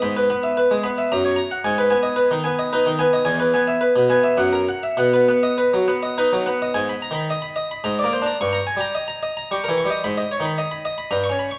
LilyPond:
<<
  \new Staff \with { instrumentName = "Harpsichord" } { \time 3/4 \key b \major \tempo 4 = 110 b''16 b'16 b''16 e''16 b'16 gis16 b''16 e''16 ais''16 cis''16 ais''16 fis''16 | gis''16 b'16 gis''16 dis''16 b'16 dis16 gis''16 dis''16 b'16 dis16 gis''16 dis''16 | gis''16 b'16 gis''16 e''16 b'16 b,16 gis''16 e''16 fis''16 ais'16 fis''16 e''16 | fis''16 b'16 fis''16 dis''16 b'16 fis16 fis''16 dis''16 b'16 fis16 fis''16 dis''16 |
\key gis \minor gis''16 b''16 ais''16 b''16 dis''16 b''16 dis''16 b''16 ais''16 d''16 bis'16 ais''16 | cis'''16 ais''16 gis''16 ais''16 dis''16 ais''16 dis''16 ais''16 cis'''16 ais'16 cis'''16 dis''16 | b''16 dis''16 cis''16 b''16 dis''16 b''16 dis''16 b''16 bes''16 des'''16 b''16 des'''16 | }
  \new Staff \with { instrumentName = "Harpsichord" } { \clef bass \time 3/4 \key b \major gis,8 b8 r8 b8 fis,8 r8 | gis,8 b8 r8 b8 dis'8 b8 | e,8 b8 r8 b8 fis,8 r8 | b,8 b8 r8 b8 dis'8 b8 |
\key gis \minor \tuplet 3/2 { gis,8 r8 dis8 } r4 \tuplet 3/2 { gis,8 ais8 d'8 } | \tuplet 3/2 { g,8 r8 g8 } r4 \tuplet 3/2 { g8 e8 g8 } | \tuplet 3/2 { gis,8 r8 dis8 } r4 \tuplet 3/2 { g,8 des'8 r8 } | }
>>